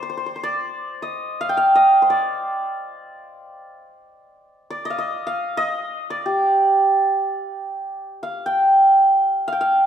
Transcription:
0.00 0.09 C5 medium
0.00 0.43 D5 medium
0.10 0.17 C5 medium
0.17 0.26 C5 medium
0.26 0.35 C5 soft
0.36 2.02 C5 soft
0.43 1.08 D5 medium
1.02 1.75 D#5 medium
1.41 1.57 F5 medium
1.49 3.56 G5 medium
1.57 3.80 F5 medium
1.75 2.16 D#5 medium
2.02 4.66 C5 soft
2.10 4.56 D5 medium
4.70 4.91 D5 medium
4.85 4.98 D#5 medium
4.90 5.26 F5 medium
4.98 5.57 D#5 medium
5.27 7.49 F5 medium
5.57 6.16 D#5 medium
6.10 8.56 D5 medium
6.26 9.40 G4 medium
8.23 9.47 F5 medium
8.46 9.52 G5 medium
9.48 9.60 F5 medium
9.52 9.86 G5 medium
9.61 9.86 F5 medium

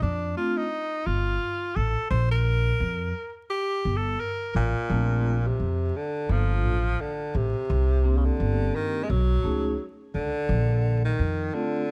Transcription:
0.02 0.31 F2 medium
0.02 0.35 D4 medium
0.36 0.62 A3 medium
0.36 0.63 C4 medium
0.36 0.63 D4 medium
0.36 0.58 F4 medium
0.36 0.63 F4 medium
0.57 1.08 D#4 loud
1.06 1.36 G1 medium
1.06 1.77 F4 medium
1.76 1.93 A1 medium
1.76 2.10 A4 loud
2.10 2.70 A#1 loud
2.10 2.29 C5 medium
2.31 3.32 A#4 loud
2.80 3.10 F2 medium
3.50 3.98 G4 loud
3.85 4.15 G1 medium
3.97 4.22 A4 medium
4.20 4.55 A#4 medium
4.55 4.72 A1 medium
4.55 5.48 A#2 loud
4.89 5.49 A#1 loud
4.89 5.33 A3 medium
4.89 5.33 C4 medium
4.89 5.33 D4 medium
4.89 5.34 F4 medium
5.47 5.98 C3 medium
5.60 5.89 F2 medium
5.97 6.33 D3 loud
6.29 6.64 G1 medium
6.29 7.02 F3 loud
6.29 6.72 A#3 medium
6.29 6.73 D4 medium
6.29 6.73 F4 medium
6.29 6.73 A4 medium
6.64 6.94 A1 medium
7.01 7.38 D3 medium
7.35 7.52 A1 medium
7.35 8.19 C3 medium
7.70 8.29 C2 loud
8.03 9.02 A#3 medium
8.03 9.03 C4 medium
8.03 9.03 D4 medium
8.03 9.03 G4 medium
8.17 8.27 C#3 medium
8.25 8.77 D3 loud
8.40 8.69 G1 medium
8.76 9.05 D#3 loud
9.04 9.11 G#3 medium
9.10 9.39 B1 loud
9.10 9.88 F#3 loud
9.43 9.74 C#2 medium
9.43 9.69 A3 medium
9.43 9.70 C#4 medium
9.43 9.70 D#4 medium
9.43 9.70 G#4 medium
10.14 10.31 C#2 medium
10.14 11.00 D3 loud
10.49 11.08 A#1 loud
11.05 11.56 D#3 medium
11.19 11.48 F2 medium
11.53 11.91 D3 loud
11.53 11.79 A3 medium
11.53 11.79 C4 medium
11.53 11.79 D4 medium
11.53 11.80 F4 medium

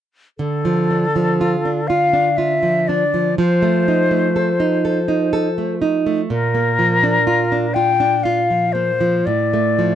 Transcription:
0.38 3.34 D3 soft
0.38 1.89 A4 medium
0.65 1.05 F3 soft
0.90 1.30 D4 soft
1.16 1.55 F3 soft
1.41 1.80 F4 soft
1.65 2.04 D4 soft
1.87 2.29 F4 soft
1.87 2.38 F5 soft
2.13 2.53 D4 soft
2.37 2.78 F4 soft
2.37 2.89 E5 medium
2.63 3.03 F3 soft
2.88 3.29 D4 soft
2.88 3.37 D5 medium
3.14 3.37 F3 soft
3.38 6.26 F3 soft
3.38 5.78 C5 medium
3.62 4.02 A3 soft
3.88 4.27 D#4 soft
4.11 4.50 A3 soft
4.36 4.75 A4 soft
4.60 4.99 D#4 soft
4.85 5.24 A4 soft
5.08 5.48 D#4 soft
5.33 5.72 A4 soft
5.58 5.97 A3 soft
5.82 6.20 D#4 soft
6.06 6.30 A3 soft
6.30 9.22 A#2 soft
6.30 7.75 A#4 medium
6.55 6.92 A#3 soft
6.79 7.17 F3 soft
7.03 7.41 D4 soft
7.27 7.65 F4 soft
7.52 7.90 D4 soft
7.74 8.15 F4 soft
7.74 8.25 G5 medium
8.00 8.39 D4 soft
8.23 8.65 F4 soft
8.23 8.74 F5 soft
8.50 8.90 F3 soft
8.72 9.16 A#3 soft
8.72 9.27 C5 medium
9.01 9.26 F3 soft
9.25 9.95 A2 soft
9.25 9.95 D5 soft
9.54 9.94 A3 soft
9.79 9.95 F3 soft

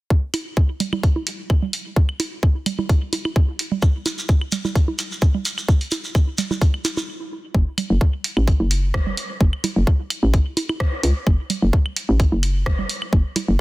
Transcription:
0.10 kick loud
0.34 open hi-hat medium
0.34 low bongo medium
0.34 claves medium
0.57 kick loud
0.80 open hi-hat medium
0.80 low conga medium
0.93 low bongo medium
0.93 low conga medium
0.93 claves medium
1.03 kick loud
1.03 open hi-hat soft
1.16 low bongo medium
1.27 open hi-hat medium
1.50 kick loud
1.50 claves medium
1.62 low conga medium
1.73 open hi-hat medium
1.96 kick loud
2.09 claves medium
2.20 open hi-hat medium
2.20 low bongo medium
2.43 kick loud
2.66 open hi-hat medium
2.66 low conga medium
2.66 claves medium
2.79 low bongo medium
2.79 low conga medium
2.89 kick loud
2.89 open hi-hat soft
3.13 open hi-hat medium
3.13 low bongo medium
3.25 low bongo medium
3.25 claves medium
3.36 kick loud
3.59 open hi-hat medium
3.72 low conga medium
3.82 kick loud
3.82 claves medium
3.82 shekere soft
4.06 open hi-hat medium
4.06 low bongo medium
4.06 shekere medium
4.18 shekere medium
4.29 kick loud
4.29 shekere soft
4.41 claves medium
4.52 open hi-hat loud
4.52 low conga medium
4.52 shekere medium
4.65 low bongo medium
4.65 low conga medium
4.65 shekere medium
4.75 kick loud
4.75 open hi-hat soft
4.75 shekere soft
4.88 low bongo medium
4.99 open hi-hat medium
4.99 claves medium
4.99 shekere loud
5.12 shekere soft
5.21 kick loud
5.21 shekere soft
5.34 low conga medium
5.45 open hi-hat loud
5.45 shekere loud
5.58 claves medium
5.58 shekere medium
5.68 kick loud
5.68 shekere soft
5.81 open hi-hat soft
5.91 open hi-hat medium
5.91 low bongo medium
5.91 shekere medium
6.04 shekere soft
6.15 kick loud
6.15 claves medium
6.15 shekere soft
6.38 open hi-hat medium
6.38 low conga medium
6.38 shekere loud
6.51 low bongo medium
6.51 low conga medium
6.51 shekere soft
6.61 kick loud
6.61 open hi-hat soft
6.61 shekere soft
6.74 claves medium
6.85 open hi-hat medium
6.85 low bongo medium
6.85 shekere loud
6.97 low bongo medium
6.97 shekere soft
7.54 7.64 F#1 loud
7.54 kick loud
7.78 open hi-hat medium
7.78 low conga medium
7.78 claves medium
7.90 7.98 F#1 loud
8.01 kick loud
8.24 open hi-hat medium
8.37 8.54 A1 loud
8.37 low bongo medium
8.37 claves medium
8.48 kick loud
8.48 open hi-hat soft
8.60 9.13 F#1 medium
8.60 low bongo medium
8.71 open hi-hat medium
8.94 kick loud
8.94 cross-stick loud
8.94 low conga medium
8.94 claves medium
9.07 low conga loud
9.17 open hi-hat medium
9.41 9.50 F#1 medium
9.41 kick loud
9.53 claves medium
9.64 open hi-hat medium
9.64 low bongo medium
9.64 low conga medium
9.76 9.85 F#1 loud
9.87 kick loud
10.10 open hi-hat loud
10.10 claves medium
10.23 10.40 A1 loud
10.23 low bongo medium
10.34 kick loud
10.34 open hi-hat soft
10.57 open hi-hat medium
10.57 low bongo medium
10.69 low bongo medium
10.69 claves medium
10.80 kick loud
10.80 cross-stick loud
11.03 11.13 C#2 loud
11.03 open hi-hat medium
11.27 11.36 F#1 loud
11.27 kick loud
11.27 claves medium
11.50 open hi-hat medium
11.50 low conga medium
11.62 11.71 F#1 loud
11.73 kick loud
11.86 claves medium
11.96 open hi-hat medium
12.09 12.26 A1 loud
12.09 low bongo medium
12.20 kick loud
12.20 open hi-hat soft
12.32 12.85 F#1 medium
12.32 low bongo medium
12.43 open hi-hat loud
12.43 claves medium
12.66 kick loud
12.66 cross-stick loud
12.66 low conga medium
12.79 low conga medium
12.89 open hi-hat medium
13.02 claves medium
13.13 13.22 F#1 loud
13.13 kick loud
13.36 open hi-hat medium
13.36 low bongo medium
13.36 low conga medium
13.48 13.57 F#1 loud

